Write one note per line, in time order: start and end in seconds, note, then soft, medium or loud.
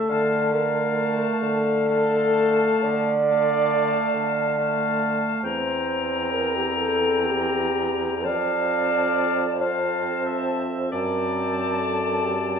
0.00 0.55 A4 loud
0.09 1.26 D3 medium
0.09 0.53 A3 medium
0.09 0.52 F5 medium
0.09 0.52 A5 medium
0.52 1.86 A3 medium
0.52 1.41 A#4 loud
0.52 1.85 F5 medium
0.52 1.86 A5 medium
1.41 2.68 D3 medium
1.41 2.85 A4 loud
1.88 3.12 A3 medium
1.88 3.12 F5 medium
1.88 3.04 A5 medium
2.84 3.99 D3 medium
2.84 5.00 D5 loud
3.29 4.55 A3 medium
3.29 4.55 F5 medium
3.29 4.55 A5 medium
4.14 5.28 D3 medium
4.56 5.42 A3 medium
4.56 5.42 F5 medium
4.56 5.42 A5 medium
5.43 8.26 E2 medium
5.43 8.21 C4 medium
5.43 6.33 C5 loud
5.43 8.21 G5 medium
5.43 8.25 A#5 medium
6.32 6.57 A#4 loud
6.55 6.77 G4 medium
6.78 7.27 A4 loud
7.26 8.27 G4 loud
8.24 10.92 F2 medium
8.24 9.44 C4 medium
8.24 9.63 D5 loud
8.24 9.44 F5 medium
8.24 9.60 A5 medium
9.60 10.89 C4 medium
9.60 10.91 C5 medium
9.60 10.24 F5 medium
9.60 10.62 A5 medium
10.26 10.90 E5 medium
10.92 12.60 F#2 medium
10.92 12.60 C4 medium
10.92 11.81 A#4 medium
10.92 12.60 D5 medium
10.92 12.60 A5 medium
11.79 12.25 A4 medium
12.23 12.60 G4 loud